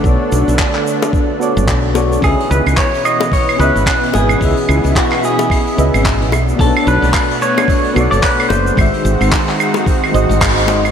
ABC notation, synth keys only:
X:1
M:4/4
L:1/8
Q:"Swing 16ths" 1/4=110
K:C#phr
V:1 name="Synth keys"
[B,FAcd]4- [B,FAcd] [B,FAcd]2 [B,FAcd] | [CGB^de]4- [CGBde] [CGBde]3 | [CGB^de]4- [CGBde] [CGBde]2 z | [B,DFAc]4- [B,DFAc] [B,FAcd]3 |
[^D,G,F^Be]4- [D,G,FBe] [G,^DFB^d]2 [G,DFBd] |]